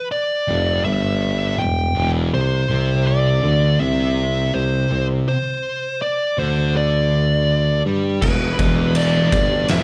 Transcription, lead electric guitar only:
0.12 D5
0.84 E5
1.58 G5
2.34 C5
3.07 D5
3.79 E5
4.54 C5
5.28 C5
6.02 D5
6.39 C5
6.77 D5
8.22 B4
8.96 D5
9.70 E5

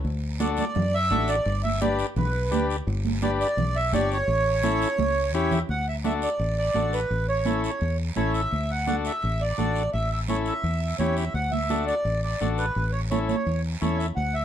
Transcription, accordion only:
0.42 D5
0.59 D5
0.94 E5
1.29 D5
1.64 E5
1.82 D5
1.99 D5
2.17 B4
3.23 D5
3.41 D5
3.76 E5
3.94 D5
4.13 C#5
5.35 C#5
5.53 E5
5.70 F#5
5.88 E5
6.05 E5
6.23 D5
6.58 D5
6.94 B4
7.29 C#5
7.64 C#5
8.16 C#5
8.34 E5
8.71 F#5
8.87 F#5
9.06 E5
9.41 D5
9.93 E5
10.12 E5
10.29 C#5
10.47 E5
10.99 C#5
11.17 E5
11.34 F#5
11.51 E5
11.87 D5
12.23 D5
12.41 D5
12.58 B4
12.92 C#5
13.11 C#5
13.28 C#5
13.81 C#5
13.98 E5
14.16 F#5
14.34 E5

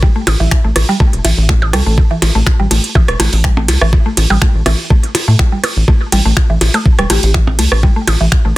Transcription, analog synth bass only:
0.27 A1
0.40 A1
0.65 A1
0.76 A1
1.13 E1
1.25 A1
1.38 A1
1.73 C2
1.86 A1
2.22 A1
2.35 A1
2.60 A1
2.71 A1
3.08 E1
3.20 A1
3.33 A1
3.68 C2
3.82 A1
4.17 A1
4.30 A1
4.55 A1
4.66 A1
5.28 A2
5.77 A1
6.12 A1
6.25 A1
6.50 A1
6.61 A1
6.99 E1
7.10 A1
7.23 A1
7.59 C2
7.72 A1
8.08 A1
8.21 A1
8.45 A1

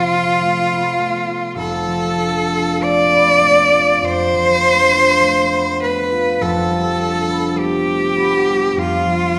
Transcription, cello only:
Already playing: F4
1.58 A4
2.83 D5
4.04 C5
5.83 B4
6.42 A4
7.59 G4
8.78 F4

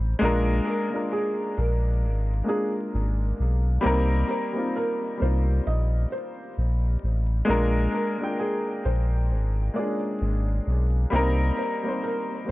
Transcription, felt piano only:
0.67 A#4
1.13 G#4
1.58 A#4
2.49 G#4
4.30 C5
4.76 A#4
5.22 C5
5.67 D#5
6.12 C5
7.94 A#4
8.39 G#4
8.85 C5
9.76 D5
11.58 C5
12.04 A#4

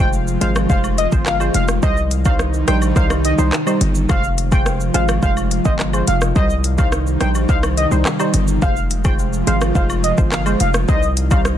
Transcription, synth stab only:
0.00 G#3 F4 C5
0.41 G#3 F4 C5
0.69 G#3 F4 C5
1.12 G#3 F4 C5
1.40 G#3 F4 C5
1.82 G3 D#4 C5
2.25 G3 D#4 C5
2.68 G3 D#4 C5
2.96 G3 D#4 C5
3.38 G3 D#4 C5
3.66 G3 D#4 C5
4.09 G#3 F4 C5
4.52 G#3 F4 C5
4.94 G#3 F4 C5
5.22 G#3 F4 C5
5.65 G#3 F4 C5
5.93 G#3 F4 C5
6.36 G3 D#4 C5
6.78 G3 D#4 C5
7.21 G3 D#4 C5
7.49 G3 D#4 C5
7.91 G3 D#4 C5
8.20 G3 D#4 C5
8.62 G#3 F4 C5
9.04 G#3 F4 C5
9.47 G#3 F4 C5
9.75 G#3 F4 C5
10.18 G#3 F4 C5
10.46 G#3 F4 C5
10.88 G3 D#4 C5
11.31 G3 D#4 C5

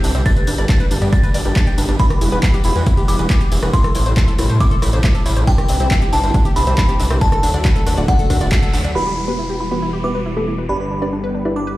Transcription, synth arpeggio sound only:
0.04 D4
0.15 C5
0.26 D4
0.37 B4
0.47 D4
0.58 D5
0.69 D4
0.80 B4
0.91 D4
1.02 D5
1.13 D4
1.24 B4
1.34 D5
1.45 G4
1.56 D4
1.67 G5
1.78 D4
1.89 D4
2.00 E4
2.11 G4
2.21 E4
2.32 B4
2.43 E4
2.54 G4
2.65 E4
2.76 B4
2.87 E4
2.97 G4
3.08 E4
3.19 B4
3.30 E4
3.41 G4
3.52 E4
3.63 B4
3.73 E4
3.84 A4
3.95 E4
4.06 C5
4.17 E4
4.28 A4
4.39 E4
4.50 C5
4.60 E4
4.71 A4
4.82 E4
4.93 C5
5.04 E4
5.15 A4
5.26 E4
5.37 C5
5.47 D4
5.58 G4
5.69 D4
5.80 C5
5.91 D4
6.02 G4
6.13 D4
6.23 C5
6.34 D4
6.45 G4
6.56 D4
6.67 C5
6.78 D4
6.89 G4
7.00 D4
7.10 C5
7.21 D4
7.32 A4
7.43 D4
7.54 D5
7.65 D4
7.76 A4
7.87 D4
7.97 D5
8.08 D4
8.19 A4
8.30 D4
8.41 D5
8.52 D4
8.63 A4
8.73 D4
8.84 D5
8.95 E4
9.06 G4
9.17 E4
9.28 B4
9.39 E4
9.50 G4
9.61 E4
9.71 B4
9.82 E4
9.93 G4
10.04 E4
10.15 B4
10.26 E4
10.37 G4
10.48 E4
10.58 B4
10.69 D4
10.80 B4
10.91 D4
11.02 D5
11.13 D4
11.24 B4
11.34 D4
11.45 D5
11.56 D4
11.67 B4

